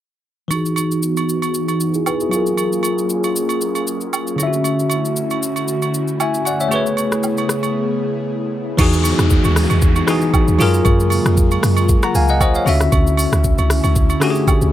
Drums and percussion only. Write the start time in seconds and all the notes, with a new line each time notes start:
0.51 high agogo, shaker
0.66 shaker
0.76 high agogo, shaker
0.91 shaker
1.03 shaker
1.17 high agogo, shaker
1.29 shaker
1.42 high agogo, shaker
1.54 shaker
1.68 high agogo, shaker
1.80 shaker
1.94 shaker
2.06 high agogo, low woodblock, shaker
2.20 shaker
2.31 high agogo, shaker
2.46 shaker
2.57 high agogo, shaker
2.73 shaker
2.83 high agogo, shaker
2.98 shaker
3.10 shaker
3.24 high agogo, shaker
3.36 shaker
3.49 high agogo, shaker
3.61 shaker
3.75 high agogo, shaker
3.87 shaker
4.01 shaker
4.13 high agogo, low woodblock, shaker
4.27 shaker
4.38 high agogo, shaker
4.53 shaker
4.64 high agogo, shaker
4.79 shaker
4.90 high agogo, shaker
5.05 shaker
5.16 shaker
5.30 high agogo, shaker
5.43 shaker
5.56 high agogo, shaker
5.68 shaker
5.82 high agogo, shaker
5.94 shaker
6.08 shaker
6.20 high agogo, low woodblock, shaker
6.34 shaker
6.45 high agogo, shaker
6.60 shaker
6.71 high agogo, shaker
6.86 shaker
6.97 high agogo, shaker
7.12 cross-stick, shaker
7.23 low woodblock, shaker
7.37 high agogo, shaker
7.49 cross-stick, shaker
7.63 high agogo, shaker
8.78 kick, crash, high agogo, shaker
8.93 shaker
9.04 open hi-hat, high agogo, shaker
9.19 cross-stick, shaker
9.30 kick, shaker
9.44 high agogo, shaker
9.56 cross-stick, open hi-hat, shaker
9.70 high agogo, shaker
9.82 kick, shaker
9.96 high agogo, shaker
10.08 cross-stick, open hi-hat, shaker
10.21 shaker
10.34 kick, high agogo, low woodblock, shaker
10.48 shaker
10.59 open hi-hat, high agogo, shaker
10.74 shaker
10.85 kick, high agogo, shaker
11.00 shaker
11.10 open hi-hat, high agogo, shaker
11.26 cross-stick, shaker
11.37 kick, shaker
11.51 high agogo, shaker
11.63 cross-stick, open hi-hat, shaker
11.77 high agogo, shaker
11.89 kick, shaker
12.03 cross-stick, high agogo, shaker
12.15 open hi-hat, shaker
12.28 shaker
12.41 kick, high agogo, low woodblock, shaker
12.55 shaker
12.66 open hi-hat, high agogo, shaker
12.81 cross-stick, shaker
12.92 kick, high agogo, shaker
13.07 shaker
13.17 open hi-hat, high agogo, shaker
13.33 cross-stick, shaker
13.44 kick, shaker
13.58 high agogo, shaker
13.70 cross-stick, open hi-hat, shaker
13.84 high agogo, shaker
13.96 kick, shaker
14.10 high agogo, shaker
14.21 cross-stick, open hi-hat, shaker
14.35 shaker
14.47 kick, high agogo, low woodblock, shaker
14.62 shaker